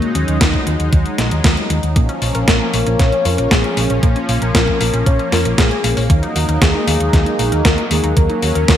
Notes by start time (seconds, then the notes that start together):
Already playing: F#3 G#3 A#3 D#4
0.02 closed hi-hat
0.15 D#2 C#4, closed hi-hat
0.28 D#2, closed hi-hat
0.41 D#2 D#4, kick, snare, closed hi-hat
0.54 kick
0.67 D#2, closed hi-hat
0.80 D#2, closed hi-hat
0.93 D#2, kick, closed hi-hat
1.06 closed hi-hat
1.18 A#1, snare, closed hi-hat
1.31 D#2, closed hi-hat
1.44 D#2, kick, snare, closed hi-hat
1.57 closed hi-hat
1.70 D#2, closed hi-hat
1.83 D#2, closed hi-hat
1.96 A#1 F3 A#3 C#4, kick, closed hi-hat
2.09 C#4, closed hi-hat
2.22 A#1 F4, open hi-hat
2.35 A#1 A#4, closed hi-hat
2.48 A#1 F4 A#4, kick, snare, closed hi-hat
2.61 C#4
2.74 A#1 A#3 A#4, open hi-hat
2.87 A#1 C#4, closed hi-hat
2.99 A#1 A#3 C#5, kick, snare, closed hi-hat
3.12 C#4, closed hi-hat
3.25 F2 F4 A#4, open hi-hat
3.38 A#1 A#4, closed hi-hat
3.51 A#1 F4 G#4, kick, snare, closed hi-hat
3.64 C#4, closed hi-hat
3.77 A#1 A#3, open hi-hat
3.90 A#1 C#4, closed hi-hat
4.03 A#1 A#3, kick, closed hi-hat
4.16 C#4, closed hi-hat
4.29 A#1 F4, open hi-hat
4.42 A#1 A#4, closed hi-hat
4.55 A#1 F4 A#4, kick, snare, closed hi-hat
4.68 C#4, kick
4.81 A#1 A#3 A#4, open hi-hat
4.93 A#1 C#4, closed hi-hat
5.06 A#1 A#3 C#5, kick, closed hi-hat
5.19 C#4, closed hi-hat
5.32 F2 F4 A#4, snare, open hi-hat
5.45 A#1 A#4, closed hi-hat
5.58 A#1 F4 G#4, kick, snare, closed hi-hat
5.71 C#4, closed hi-hat
5.84 A#1 A#3, open hi-hat
5.97 A#1 C#4, open hi-hat
6.10 D#2 F#3 A#3 D#4, kick, closed hi-hat
6.23 D#4, closed hi-hat
6.36 D#2 F#4, open hi-hat
6.49 D#2 A#4, closed hi-hat
6.62 D#2 F#4 G#4, kick, snare, closed hi-hat
6.75 D#4
6.87 D#2 A#3 G#4, open hi-hat
7.00 D#2 D#4, closed hi-hat
7.13 D#2 A#3, kick, snare, closed hi-hat
7.26 D#4, closed hi-hat
7.39 A#1 F#4, open hi-hat
7.52 D#2 A#4, closed hi-hat
7.65 D#2 F#4 A#4, kick, snare, closed hi-hat
7.78 D#4, closed hi-hat
7.91 D#2 A#3 G#4, open hi-hat
8.04 D#2 D#4, closed hi-hat
8.17 D#2 A#3 C#4 A#4, kick, closed hi-hat
8.30 D#4, closed hi-hat
8.42 D#2 F#4, open hi-hat
8.55 D#2 A#4, closed hi-hat
8.68 D#2 F#4, kick, snare, closed hi-hat